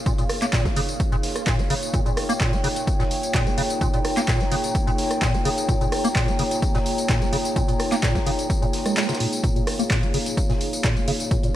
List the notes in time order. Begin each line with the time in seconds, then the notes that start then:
Already playing: A#3 D#4 F4 G#4 C#5 F5
0.06 A#2, kick, closed hi-hat, tambourine
0.18 A#2, closed hi-hat, tambourine
0.29 cross-stick, open hi-hat, tambourine
0.42 A#3, clap, closed hi-hat, tambourine
0.53 A#2, kick, snare, clap, closed hi-hat, tambourine
0.65 C#4, kick, snare, closed hi-hat, tambourine
0.76 C#3, open hi-hat, tambourine
0.89 closed hi-hat, tambourine
1.00 kick, closed hi-hat, tambourine
1.12 A#2, closed hi-hat, tambourine
1.23 snare, open hi-hat, tambourine
1.36 cross-stick, closed hi-hat, tambourine
1.47 A#2, kick, snare, clap, closed hi-hat, tambourine
1.59 C#4, closed hi-hat, tambourine
1.70 C#3, open hi-hat, tambourine
1.82 closed hi-hat, tambourine
1.94 A#2 G5, kick, closed hi-hat, tambourine
2.06 A#2, closed hi-hat, tambourine
2.17 cross-stick, open hi-hat
2.29 A#3, closed hi-hat, tambourine
2.40 A#2, kick, snare, clap, closed hi-hat, tambourine
2.53 C#4, closed hi-hat, tambourine
2.64 C#3, open hi-hat, tambourine
2.76 closed hi-hat, tambourine
2.87 kick, closed hi-hat, tambourine
3.00 A#2, snare, closed hi-hat, tambourine
3.04 A#5
3.11 open hi-hat, tambourine
3.23 closed hi-hat, tambourine
3.34 A#2, kick, snare, clap, closed hi-hat, tambourine
3.46 C#4, closed hi-hat, tambourine
3.58 C#3, open hi-hat, tambourine
3.70 closed hi-hat, tambourine
3.81 A#2, kick, closed hi-hat, tambourine
3.94 A#2, closed hi-hat, tambourine
4.05 cross-stick, open hi-hat, tambourine
4.17 A#3, clap, closed hi-hat, tambourine
4.28 A#2, kick, snare, clap, closed hi-hat, tambourine
4.40 C#4, snare, closed hi-hat, tambourine
4.52 C#3, open hi-hat, tambourine
4.64 closed hi-hat, tambourine
4.75 kick, closed hi-hat, tambourine
4.87 A#2, closed hi-hat, tambourine
4.98 snare, open hi-hat, tambourine
5.11 cross-stick, closed hi-hat, tambourine
5.22 A#2, kick, snare, clap, closed hi-hat, tambourine
5.34 C#4, closed hi-hat, tambourine
5.45 C#3, open hi-hat, tambourine
5.58 closed hi-hat, tambourine
5.69 A#2, kick, closed hi-hat, tambourine
5.81 A#2, closed hi-hat, tambourine
5.92 cross-stick, open hi-hat
6.04 A#3, closed hi-hat, tambourine
6.15 A#2, kick, snare, clap, closed hi-hat, tambourine
6.28 C#4, closed hi-hat, tambourine
6.39 C#3, open hi-hat, tambourine
6.51 closed hi-hat, tambourine
6.62 kick, closed hi-hat, tambourine
6.75 A#2, snare, closed hi-hat, tambourine
6.86 open hi-hat, tambourine
6.98 closed hi-hat, tambourine
7.09 A#2, kick, snare, clap, closed hi-hat, tambourine
7.21 C#4, closed hi-hat, tambourine
7.33 C#3, open hi-hat, tambourine
7.45 closed hi-hat, tambourine
7.56 A#2, kick, closed hi-hat, tambourine
7.68 A#2, closed hi-hat, tambourine
7.80 cross-stick, open hi-hat, tambourine
7.92 A#3, clap, closed hi-hat, tambourine
8.03 A#2, kick, snare, clap, closed hi-hat, tambourine
8.15 C#4, kick, snare, closed hi-hat, tambourine
8.26 C#3, open hi-hat, tambourine
8.39 closed hi-hat, tambourine
8.50 kick, closed hi-hat, tambourine
8.62 A#2, closed hi-hat, tambourine
8.73 snare, open hi-hat, tambourine
8.85 G#3, cross-stick, closed hi-hat, tambourine
8.97 G#3, snare, clap, closed hi-hat, tambourine
9.03 snare, tambourine
9.09 C#3, snare, closed hi-hat, tambourine
9.15 snare, tambourine
9.20 A#2, open hi-hat, tambourine
9.33 closed hi-hat, tambourine
9.44 A#2 F5, kick, closed hi-hat, tambourine
9.56 A#2, closed hi-hat, tambourine
9.67 cross-stick, open hi-hat
9.79 A#3, closed hi-hat, tambourine
9.90 A#2, kick, snare, clap, closed hi-hat, tambourine
10.03 C#4, closed hi-hat, tambourine
10.14 C#3, open hi-hat, tambourine
10.26 closed hi-hat, tambourine
10.37 kick, closed hi-hat, tambourine
10.49 A#2, snare, closed hi-hat, tambourine
10.54 F5
10.61 open hi-hat, tambourine
10.73 closed hi-hat, tambourine
10.84 A#2, kick, snare, clap, closed hi-hat, tambourine
10.96 C#4, closed hi-hat, tambourine
11.08 C#3, open hi-hat, tambourine
11.20 closed hi-hat, tambourine
11.31 A#2, kick, closed hi-hat, tambourine
11.43 A#2, closed hi-hat, tambourine